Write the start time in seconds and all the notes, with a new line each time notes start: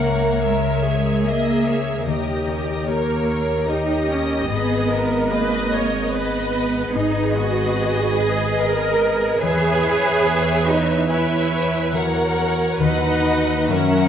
Already playing: C#2 C#3 A#3 A#4 E5 F#5
0.01 C#4 C#5
0.43 G#3 A#4 E5
0.85 G#4 C#5
1.26 A#3 D#5 E5
1.67 C#5
2.06 D#2 D#3 G4 A#4 C#5 D#5
2.47 C#4
2.88 A#3 G4 A#4 C#5
3.28 A#4 C#5
3.67 D#4 G4 D#5
4.09 C#4 C#5
4.49 G#1 G#2 B3 G#4 B4 D#5
4.90 B3 A#4
5.30 A#3 G#4 B4 D#5
5.72 B4 C#5
6.12 B3 B4 D#5
6.53 B4
6.95 G#1 G#2 D#4 G#4 B4 D#5
7.36 B3 F#4
7.78 G#4
8.19 G#4 B4
8.60 A#4 D#5
9.00 B4
9.41 E2 E3 G#4 B4 C#5 E5
9.83 C#4
10.25 B4
10.66 D#4 C#5
11.08 E4 B4 C#5 E5 G#5
11.50 C#5
11.92 E3 F#4 A#4 C#5 F#5
12.36 C#4 F#4
12.80 D#2 D#3 D#4 B4 D#5
12.84 F#5
13.24 D#4 F#4
13.68 F#2 C#4 A#4 E5 F#5